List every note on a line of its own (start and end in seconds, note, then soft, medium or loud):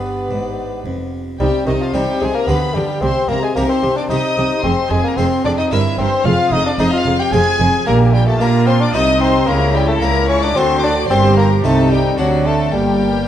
0.00 0.27 G1 medium
0.00 0.27 G2 soft
0.00 0.27 G2 medium
0.00 0.84 B3 medium
0.00 1.35 B3 soft
0.00 1.35 D4 soft
0.00 1.20 G4 medium
0.00 0.83 B4 medium
0.00 1.20 D5 medium
0.31 0.82 G#1 medium
0.31 0.82 G#2 medium
0.31 0.81 G#2 soft
0.86 1.36 F1 medium
0.86 1.36 F2 medium
0.86 1.36 F2 soft
1.40 1.48 C2 medium
1.40 1.48 C3 medium
1.40 1.65 C3 medium
1.40 1.65 G3 medium
1.40 1.48 D#4 medium
1.40 1.65 G4 medium
1.40 1.65 G5 loud
1.67 1.75 C2 medium
1.67 1.91 C3 medium
1.67 1.75 C3 medium
1.67 1.73 D#3 medium
1.67 1.80 D#4 medium
1.67 1.75 D#4 medium
1.67 1.80 D#5 loud
1.80 1.94 F3 medium
1.80 1.94 F4 medium
1.80 1.95 F5 medium
1.94 2.02 C2 medium
1.94 2.18 C3 medium
1.94 2.02 C3 medium
1.94 2.21 G3 medium
1.94 2.33 C4 medium
1.94 2.02 D#4 medium
1.94 2.33 D#4 medium
1.94 2.21 G4 medium
1.94 2.21 G5 loud
2.21 2.29 C2 medium
2.21 2.45 C3 medium
2.21 2.29 C3 medium
2.21 2.34 G#3 medium
2.21 2.29 D#4 medium
2.21 2.35 G#4 medium
2.21 2.35 G#5 loud
2.35 2.47 A#3 medium
2.35 2.48 A#4 medium
2.35 2.48 A#5 medium
2.47 2.56 D2 medium
2.47 2.56 D3 medium
2.47 2.72 D3 medium
2.47 2.76 B3 medium
2.47 2.98 F4 medium
2.47 2.56 G4 medium
2.47 2.99 G4 medium
2.47 2.56 B4 medium
2.47 2.75 B5 loud
2.75 2.83 D2 medium
2.75 3.00 D3 medium
2.75 2.83 D3 medium
2.75 3.03 G3 medium
2.75 2.83 G4 medium
2.75 3.02 G4 medium
2.75 3.02 G5 loud
3.02 3.10 C2 medium
3.02 3.10 C3 medium
3.02 3.27 C3 medium
3.02 3.30 C4 medium
3.02 3.10 G4 medium
3.02 3.29 C5 medium
3.02 3.29 C6 loud
3.29 3.37 C2 medium
3.29 3.53 C3 medium
3.29 3.37 C3 medium
3.29 3.42 A#3 medium
3.29 3.37 G4 medium
3.29 3.35 A#4 medium
3.29 3.42 A#5 loud
3.42 3.55 G#3 medium
3.42 3.48 G#4 medium
3.42 3.56 G#5 loud
3.56 3.64 C2 medium
3.56 3.64 C3 medium
3.56 3.81 C3 medium
3.56 3.68 A#3 medium
3.56 3.95 C4 medium
3.56 3.95 D#4 medium
3.56 3.64 G4 medium
3.56 3.96 G4 medium
3.56 3.70 A#4 loud
3.56 3.61 A#5 loud
3.69 3.98 C4 medium
3.69 3.97 C5 medium
3.69 3.96 C6 loud
3.83 3.91 C2 medium
3.83 3.91 C3 medium
3.83 4.08 C3 medium
3.83 3.91 G4 medium
3.96 4.09 D4 medium
3.96 4.02 D5 medium
3.96 4.03 D6 medium
4.10 4.18 C2 medium
4.10 4.18 C3 medium
4.10 4.35 C3 medium
4.10 4.49 C4 medium
4.10 4.63 D#4 loud
4.10 4.49 D#4 medium
4.10 4.18 G4 medium
4.10 4.50 G4 medium
4.10 4.63 D#5 medium
4.10 4.63 D#6 loud
4.37 4.45 C2 medium
4.37 4.45 C3 medium
4.37 4.61 C3 medium
4.37 4.45 G4 medium
4.64 4.72 F1 medium
4.64 4.72 F2 medium
4.64 4.88 F2 medium
4.64 4.90 C4 loud
4.64 4.72 G#4 medium
4.64 4.91 C5 medium
4.64 4.91 C6 loud
4.90 4.99 F1 medium
4.90 5.15 F2 medium
4.90 4.99 F2 medium
4.90 5.03 G#3 medium
4.90 5.04 G#4 medium
4.90 5.00 G#4 medium
4.90 5.04 G#5 loud
5.04 5.19 A#3 medium
5.04 5.18 A#4 medium
5.04 5.18 A#5 loud
5.17 5.26 F1 medium
5.17 5.42 F2 medium
5.17 5.26 F2 medium
5.17 5.44 C4 loud
5.17 5.57 C4 medium
5.17 5.57 F4 medium
5.17 5.26 G#4 medium
5.17 5.57 G#4 medium
5.17 5.26 C5 loud
5.17 5.44 C6 loud
5.44 5.53 F1 medium
5.44 5.53 F2 medium
5.44 5.69 F2 medium
5.44 5.58 D4 medium
5.44 5.53 G#4 medium
5.44 5.50 D5 loud
5.44 5.50 D6 loud
5.58 5.73 D#4 medium
5.58 5.71 D#5 medium
5.58 5.64 D#6 loud
5.71 5.79 G1 medium
5.71 5.96 G2 medium
5.71 5.80 G2 medium
5.71 6.22 C4 medium
5.71 5.98 E4 loud
5.71 6.22 E4 medium
5.71 5.80 A#4 medium
5.71 6.22 A#4 medium
5.71 5.98 E5 loud
5.71 5.79 E6 loud
5.98 6.06 G1 medium
5.98 6.06 G2 medium
5.98 6.23 G2 medium
5.98 6.27 C4 loud
5.98 6.07 A#4 medium
5.98 6.25 C5 medium
5.98 6.25 C6 loud
6.25 6.33 F1 medium
6.25 6.49 F2 medium
6.25 6.33 F2 medium
6.25 6.54 F4 loud
6.25 6.34 G#4 medium
6.25 6.52 F5 loud
6.25 6.52 F6 loud
6.51 6.60 F1 medium
6.51 6.76 F2 medium
6.51 6.60 F2 medium
6.51 6.66 D#4 loud
6.51 6.60 G#4 medium
6.51 6.66 D#5 medium
6.51 6.65 D#6 loud
6.65 6.72 D4 medium
6.65 6.79 D5 loud
6.65 6.79 D6 loud
6.79 6.87 F1 medium
6.79 7.03 F2 medium
6.79 6.87 F2 medium
6.79 7.18 C4 medium
6.79 6.93 D#4 loud
6.79 7.18 F4 medium
6.79 6.88 G#4 medium
6.79 7.18 G#4 medium
6.79 6.93 D#5 loud
6.79 6.92 D#6 loud
6.92 7.21 F4 loud
6.92 7.20 F5 loud
6.92 7.18 F6 loud
7.06 7.14 F1 medium
7.06 7.30 F2 medium
7.06 7.14 F2 medium
7.06 7.15 G#4 medium
7.19 7.34 G4 loud
7.19 7.33 G5 loud
7.19 7.33 G6 loud
7.32 7.40 F1 medium
7.32 7.57 F2 medium
7.32 7.41 F2 medium
7.32 7.72 C4 medium
7.32 7.72 F4 medium
7.32 7.87 G#4 loud
7.32 7.42 G#4 medium
7.32 7.72 G#4 medium
7.32 7.87 G#5 loud
7.32 7.85 G#6 loud
7.59 7.67 F1 medium
7.59 7.84 F2 medium
7.59 7.68 F2 medium
7.59 7.68 G#4 medium
7.86 8.36 A#1 loud
7.86 8.36 A#2 medium
7.86 8.37 A#2 loud
7.86 8.15 A#3 loud
7.86 8.37 G4 medium
7.86 7.95 A#4 loud
7.86 7.95 A#5 loud
8.14 8.29 G3 loud
8.14 8.27 G4 medium
8.14 8.27 G5 loud
8.27 8.42 A3 medium
8.27 8.32 A4 medium
8.27 8.40 A5 loud
8.40 8.93 A#2 medium
8.40 8.93 A#3 medium
8.40 8.68 A#3 loud
8.40 8.79 A#3 medium
8.40 8.79 D4 medium
8.40 8.94 F4 medium
8.40 8.80 G4 medium
8.40 8.48 A#4 loud
8.40 8.67 A#5 loud
8.67 8.82 C4 loud
8.67 8.73 C5 loud
8.67 8.80 C6 loud
8.81 8.94 D4 loud
8.81 8.94 D5 loud
8.81 8.94 D6 loud
8.94 9.47 C2 medium
8.94 9.44 C3 medium
8.94 9.47 C3 medium
8.94 9.44 A3 medium
8.94 9.48 D#4 medium
8.94 9.44 D#4 medium
8.94 9.20 D#4 loud
8.94 9.45 A4 medium
8.94 9.21 D#5 loud
8.94 9.21 D#6 loud
9.21 9.49 C4 loud
9.21 9.47 C5 loud
9.21 9.47 C6 loud
9.47 10.01 C#2 medium
9.47 9.98 C#3 medium
9.47 10.01 C#3 loud
9.47 9.76 A#3 loud
9.47 10.54 E4 medium
9.47 9.75 A#4 loud
9.47 9.75 A#5 loud
9.75 9.88 G3 medium
9.75 9.88 G4 medium
9.75 9.88 G5 loud
9.88 9.94 A3 medium
9.88 10.01 A4 medium
9.88 10.02 A5 loud
10.01 10.55 C#2 loud
10.01 10.55 C#2 medium
10.01 10.52 C#2 medium
10.01 10.28 A#3 medium
10.01 10.41 A#3 medium
10.01 10.41 E4 medium
10.01 10.41 G4 medium
10.01 10.29 A#4 loud
10.01 10.29 A#5 loud
10.29 10.42 C#4 loud
10.29 10.42 C#5 loud
10.29 10.42 C#6 loud
10.42 10.58 D4 loud
10.42 10.56 D5 medium
10.42 10.56 D6 loud
10.56 11.09 D2 medium
10.56 11.09 D3 medium
10.56 11.06 D3 medium
10.56 11.06 A3 medium
10.56 10.83 C4 loud
10.56 11.06 D4 medium
10.56 11.10 F#4 medium
10.56 11.07 F#4 medium
10.56 10.83 C5 loud
10.56 10.83 C6 loud
10.82 10.96 D4 loud
10.82 11.10 D5 loud
10.82 11.10 D6 loud
11.09 11.63 G1 loud
11.09 11.63 G2 loud
11.09 11.60 G2 medium
11.09 11.60 A#3 medium
11.09 11.37 C4 loud
11.09 11.60 D4 medium
11.09 11.63 G4 medium
11.09 11.61 G4 medium
11.09 11.37 C5 loud
11.09 11.36 C6 loud
11.37 11.49 A#3 medium
11.37 11.63 A#4 medium
11.37 11.64 A#5 loud
11.63 12.17 C2 medium
11.63 12.17 C3 medium
11.63 12.14 C3 medium
11.63 11.91 A3 medium
11.63 12.14 C4 medium
11.63 12.18 D#4 medium
11.63 12.15 D#4 medium
11.63 12.15 G4 medium
11.63 11.90 A4 medium
11.63 11.90 A5 loud
11.90 12.18 G3 medium
11.90 12.18 G4 medium
11.90 12.17 G5 loud
12.18 12.72 D2 medium
12.18 12.69 D3 medium
12.18 12.72 D3 medium
12.18 12.48 F#3 medium
12.18 12.69 C4 medium
12.18 12.69 D4 medium
12.18 12.72 D4 medium
12.18 12.45 F#4 medium
12.18 12.26 F#5 loud
12.45 12.73 A3 loud
12.45 12.72 A4 medium
12.45 12.72 A5 loud
12.72 13.26 G1 medium
12.72 13.23 G2 medium
12.72 13.26 G2 medium
12.72 13.28 G3 loud
12.72 13.28 A#3 medium
12.72 13.28 G4 medium
12.72 13.28 G5 loud